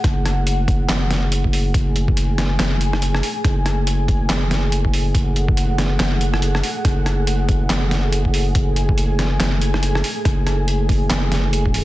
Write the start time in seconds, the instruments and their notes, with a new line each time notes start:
Already playing: analog synth pad A3 G#4 F#5
0.04 sub bass F#1, kick, cross-stick, closed hi-hat
0.26 cross-stick, closed hi-hat
0.47 closed hi-hat
0.68 kick, closed hi-hat
0.89 sub bass F#1, snare, clap, closed hi-hat
1.11 snare, closed hi-hat
1.32 closed hi-hat
1.44 kick
1.53 open hi-hat
1.74 sub bass F#1, analog synth pad G#5, kick, closed hi-hat
1.96 closed hi-hat
2.08 kick
2.17 closed hi-hat
2.38 snare, closed hi-hat
2.59 sub bass F#1, snare, clap, closed hi-hat
2.81 closed hi-hat
2.93 cross-stick
3.02 closed hi-hat
3.15 cross-stick
3.23 open hi-hat
3.44 sub bass F#1, kick, cross-stick, closed hi-hat
3.66 cross-stick, closed hi-hat
3.87 closed hi-hat
4.08 kick, closed hi-hat
4.30 sub bass F#1, snare, clap, closed hi-hat
4.51 snare, closed hi-hat
4.72 closed hi-hat
4.85 kick
4.94 open hi-hat
5.15 sub bass F#1, analog synth pad F#5, kick, closed hi-hat
5.36 closed hi-hat
5.48 kick
5.57 closed hi-hat
5.78 snare, closed hi-hat
6.00 sub bass F#1, snare, clap, closed hi-hat
6.21 closed hi-hat
6.34 cross-stick
6.42 closed hi-hat
6.55 cross-stick
6.63 open hi-hat
6.85 sub bass F#1, kick, cross-stick, closed hi-hat
7.06 cross-stick, closed hi-hat
7.27 closed hi-hat
7.49 kick, closed hi-hat
7.70 sub bass F#1, snare, clap, closed hi-hat
7.91 snare, closed hi-hat
8.13 closed hi-hat
8.25 kick
8.34 open hi-hat
8.55 sub bass F#1, analog synth pad G#5, kick, closed hi-hat
8.76 closed hi-hat
8.89 kick
8.98 closed hi-hat
9.19 snare, closed hi-hat
9.40 sub bass F#1, snare, clap, closed hi-hat
9.62 closed hi-hat
9.74 cross-stick
9.83 closed hi-hat
9.95 cross-stick
10.04 open hi-hat
10.25 sub bass F#1, kick, cross-stick, closed hi-hat
10.47 cross-stick, closed hi-hat
10.68 closed hi-hat
10.89 kick, open hi-hat
11.10 sub bass F#1, snare, clap, closed hi-hat
11.32 snare, closed hi-hat
11.53 closed hi-hat
11.66 kick
11.74 open hi-hat